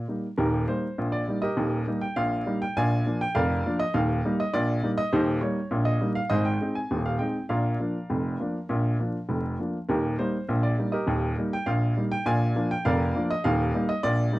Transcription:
0.08 0.25 G3 soft
0.08 0.26 A#3 soft
0.08 0.26 D#4 soft
0.37 0.64 D#1 medium
0.37 0.64 D#2 medium
0.37 0.67 D#4 medium
0.37 0.67 G4 medium
0.37 0.62 A#4 medium
0.68 0.85 G3 soft
0.68 0.85 A#3 medium
0.68 0.85 D#4 medium
0.68 1.11 C5 medium
0.98 1.24 A#1 medium
0.98 1.24 A#2 medium
1.12 1.36 D5 medium
1.28 1.45 G3 medium
1.28 1.45 A#3 soft
1.28 1.45 D#4 medium
1.42 1.98 G4 medium
1.42 1.98 A#4 medium
1.42 1.99 D#5 medium
1.57 1.83 D#1 medium
1.57 1.83 D#2 medium
1.87 2.04 G3 medium
1.87 2.04 A#3 medium
1.87 2.04 D#4 medium
2.01 2.17 G5 medium
2.16 2.42 A#1 medium
2.16 2.42 A#2 medium
2.16 2.59 F5 loud
2.46 2.63 G3 medium
2.46 2.63 A#3 medium
2.46 2.63 D#4 medium
2.62 2.76 G5 loud
2.77 3.02 A#1 medium
2.77 3.02 A#2 medium
2.77 3.18 D5 medium
2.77 3.18 F5 medium
2.77 3.19 G#5 loud
3.06 3.22 F3 medium
3.06 3.23 A#3 medium
3.06 3.23 D4 medium
3.21 3.36 G5 loud
3.35 3.61 F1 medium
3.35 3.60 F2 medium
3.35 3.77 A#4 medium
3.35 3.77 D5 medium
3.35 3.77 F5 loud
3.66 3.82 F3 medium
3.66 3.82 A#3 medium
3.66 3.83 D4 medium
3.80 3.94 D#5 loud
3.94 4.19 D#1 medium
3.94 4.19 D#2 loud
3.94 4.36 F5 loud
4.25 4.41 G3 medium
4.25 4.41 A#3 medium
4.25 4.41 D#4 medium
4.40 4.54 D#5 loud
4.53 4.79 A#1 medium
4.53 4.79 A#2 medium
4.53 4.89 D5 loud
4.83 4.99 G3 medium
4.83 5.00 A#3 medium
4.83 5.00 D#4 medium
4.98 5.12 D#5 loud
5.13 5.38 D#1 medium
5.13 5.38 D#2 loud
5.13 5.41 D#4 medium
5.13 5.40 G4 medium
5.13 5.36 C5 loud
5.41 5.58 G3 medium
5.41 5.58 A#3 medium
5.41 5.59 D#4 medium
5.41 5.84 C#5 medium
5.71 5.97 A#1 medium
5.71 5.96 A#2 medium
5.85 6.09 D#5 medium
6.01 6.17 G3 medium
6.01 6.18 A#3 medium
6.01 6.18 D#4 medium
6.15 6.30 F5 loud
6.30 6.55 G#1 medium
6.30 6.56 G#2 medium
6.30 6.45 G#4 medium
6.30 6.45 C5 medium
6.30 6.45 D#5 loud
6.45 6.73 G5 medium
6.61 6.77 G#3 medium
6.61 6.78 C4 medium
6.61 6.78 D#4 medium
6.75 6.99 G#5 medium
6.91 7.16 D#1 medium
6.91 7.16 D#2 medium
7.06 7.20 F5 medium
7.19 7.36 G#3 soft
7.19 7.37 C4 soft
7.19 7.37 D#4 medium
7.19 7.43 G5 medium
7.49 7.75 A#1 medium
7.49 7.75 A#2 medium
7.49 9.26 A#4 medium
7.49 9.26 D5 medium
7.49 9.25 F5 medium
7.80 7.96 F3 medium
7.80 7.97 A#3 soft
7.80 7.97 D4 medium
8.10 8.35 F1 medium
8.10 8.35 F2 medium
8.40 8.56 F3 soft
8.40 8.57 A#3 soft
8.40 8.57 D4 medium
8.69 8.95 A#1 medium
8.69 8.95 A#2 medium
9.00 9.16 F3 soft
9.00 9.16 A#3 soft
9.00 9.16 D4 medium
9.29 9.54 F1 medium
9.29 9.54 F2 medium
9.59 9.76 F3 soft
9.59 9.76 A#3 soft
9.59 9.76 D4 soft
9.88 10.14 D#1 medium
9.88 10.14 D#2 medium
9.88 10.17 D#4 medium
9.88 10.17 G4 medium
9.88 10.17 A#4 medium
10.19 10.35 G3 medium
10.19 10.36 A#3 medium
10.19 10.36 D#4 medium
10.19 10.61 C5 medium
10.49 10.74 A#1 medium
10.49 10.74 A#2 medium
10.63 10.87 D5 medium
10.79 10.95 G3 soft
10.79 10.95 A#3 soft
10.79 10.95 D#4 medium
10.92 11.49 G4 medium
10.92 11.49 A#4 medium
10.92 11.40 D#5 medium
11.07 11.33 D#1 medium
11.07 11.33 D#2 medium
11.38 11.54 G3 soft
11.38 11.54 A#3 medium
11.38 11.55 D#4 medium
11.53 11.68 G5 loud
11.66 11.92 A#1 medium
11.66 11.92 A#2 medium
11.66 12.02 F5 loud
11.97 12.13 G3 medium
11.97 12.14 A#3 soft
11.97 12.14 D#4 medium
12.12 12.27 G5 loud
12.26 12.52 A#1 medium
12.26 12.51 A#2 medium
12.26 12.68 D5 medium
12.26 12.68 F5 medium
12.26 12.69 G#5 loud
12.56 12.72 F3 medium
12.56 12.72 A#3 medium
12.56 12.73 D4 medium
12.71 12.86 G5 loud
12.85 13.11 F1 medium
12.85 13.11 F2 medium
12.85 13.27 A#4 medium
12.85 13.28 D5 medium
12.85 13.21 F5 loud
13.15 13.32 F3 medium
13.15 13.32 A#3 medium
13.15 13.32 D4 medium
13.30 13.45 D#5 loud
13.44 13.70 D#1 loud
13.44 13.70 D#2 loud
13.44 13.87 F5 loud
13.74 13.90 G3 medium
13.74 13.91 A#3 medium
13.74 13.91 D#4 medium
13.89 14.04 D#5 loud
14.03 14.29 A#1 medium
14.03 14.29 A#2 medium
14.03 14.39 D5 loud
14.33 14.39 G3 medium
14.33 14.39 A#3 medium
14.33 14.39 D#4 medium

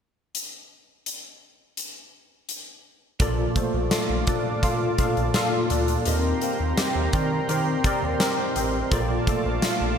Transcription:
0.35 closed hi-hat medium
1.06 closed hi-hat medium
1.77 closed hi-hat medium
2.49 closed hi-hat medium
3.20 3.47 A#1 loud
3.20 4.23 A#2 medium
3.20 6.06 F3 medium
3.20 3.54 A#3 loud
3.20 3.54 F4 medium
3.20 3.54 A4 medium
3.20 3.54 D5 loud
3.20 6.03 F5 medium
3.20 6.03 A5 medium
3.20 6.03 D6 medium
3.20 kick loud
3.20 closed hi-hat medium
3.55 3.89 A3 medium
3.55 6.13 A3 medium
3.55 3.90 F4 medium
3.55 3.90 A4 medium
3.55 3.90 C5 medium
3.55 kick medium
3.55 closed hi-hat medium
3.74 3.87 A#1 loud
3.91 4.25 A3 medium
3.91 4.25 F4 medium
3.91 4.61 F4 medium
3.91 4.25 A4 medium
3.91 4.26 D5 medium
3.91 snare loud
3.91 closed hi-hat medium
4.09 4.23 A#1 loud
4.27 4.61 A#2 medium
4.27 4.54 A#2 medium
4.27 4.97 D4 medium
4.27 4.61 F4 medium
4.27 4.61 A4 medium
4.27 4.62 D5 medium
4.27 kick medium
4.27 closed hi-hat medium
4.63 4.97 A#2 medium
4.63 4.90 A#2 loud
4.63 5.33 F4 medium
4.63 4.97 F4 medium
4.63 4.97 A4 medium
4.63 4.97 F5 medium
4.63 kick medium
4.63 closed hi-hat medium
4.98 5.32 A#2 medium
4.98 5.69 D4 medium
4.98 5.32 F4 medium
4.98 5.33 A4 medium
4.98 5.33 F5 loud
4.98 kick medium
4.98 closed hi-hat medium
5.17 5.30 A#1 medium
5.17 closed hi-hat soft
5.34 5.68 A#2 loud
5.34 6.13 F4 medium
5.34 5.68 F4 medium
5.34 5.68 A4 medium
5.34 5.69 F5 loud
5.34 snare loud
5.34 closed hi-hat medium
5.70 5.97 D2 medium
5.70 6.04 A#2 medium
5.70 6.13 D4 medium
5.70 6.04 F4 medium
5.70 6.04 A4 medium
5.70 6.04 D5 medium
5.70 closed hi-hat medium
5.88 closed hi-hat soft
6.05 6.33 D#2 loud
6.05 7.09 D#3 medium
6.05 8.91 D#3 medium
6.05 6.39 C4 medium
6.05 6.40 G4 medium
6.05 8.89 A#4 medium
6.05 6.40 A#4 medium
6.05 6.40 D#5 loud
6.05 8.89 G5 medium
6.05 8.89 A#5 medium
6.05 8.89 C6 medium
6.05 closed hi-hat medium
6.41 9.27 A#3 medium
6.41 6.75 C4 medium
6.41 6.75 G4 medium
6.41 6.76 A#4 medium
6.41 6.76 F5 medium
6.41 closed hi-hat medium
6.60 6.73 D#2 medium
6.77 7.11 C4 medium
6.77 7.11 G4 medium
6.77 7.48 G4 medium
6.77 7.11 A#4 medium
6.77 7.12 D#5 medium
6.77 snare loud
6.77 closed hi-hat medium
6.95 7.09 D#2 medium
7.13 7.40 D#3 medium
7.13 7.47 C4 medium
7.13 7.83 C4 medium
7.13 7.47 G4 medium
7.13 7.47 A#4 medium
7.13 7.47 D5 medium
7.13 kick medium
7.13 closed hi-hat medium
7.49 7.76 D#3 loud
7.49 7.83 C4 medium
7.49 8.19 G4 medium
7.49 7.83 G4 medium
7.49 7.83 A#4 medium
7.49 7.83 C5 medium
7.49 closed hi-hat medium
7.84 8.18 C4 medium
7.84 8.55 C4 medium
7.84 8.18 G4 medium
7.84 8.19 A#4 medium
7.84 8.19 D5 loud
7.84 kick medium
7.84 closed hi-hat medium
8.02 8.16 D#2 medium
8.19 8.54 C4 loud
8.19 8.54 G4 medium
8.19 8.99 G4 medium
8.19 8.54 A#4 medium
8.19 8.54 D#5 loud
8.19 snare loud
8.19 closed hi-hat medium
8.55 8.83 A1 medium
8.55 8.89 C4 medium
8.55 8.99 C4 medium
8.55 8.90 G4 medium
8.55 8.90 A#4 medium
8.55 8.90 D#5 medium
8.55 closed hi-hat medium
8.91 9.18 A#1 loud
8.91 9.95 A#2 medium
8.91 9.98 F3 medium
8.91 9.25 A#3 loud
8.91 9.25 F4 medium
8.91 9.26 A4 medium
8.91 9.26 D5 loud
8.91 9.98 F5 medium
8.91 9.98 A5 medium
8.91 9.98 D6 medium
8.91 kick loud
8.91 closed hi-hat medium
9.27 9.61 A3 medium
9.27 9.98 A3 medium
9.27 9.61 F4 medium
9.27 9.61 A4 medium
9.27 9.62 D5 medium
9.27 kick medium
9.27 closed hi-hat medium
9.45 9.59 A#1 loud
9.62 9.97 A3 medium
9.62 9.98 F4 medium
9.62 9.97 F4 medium
9.62 9.97 A4 medium
9.62 9.97 F5 medium
9.62 snare loud
9.62 closed hi-hat medium
9.81 9.94 A#1 loud

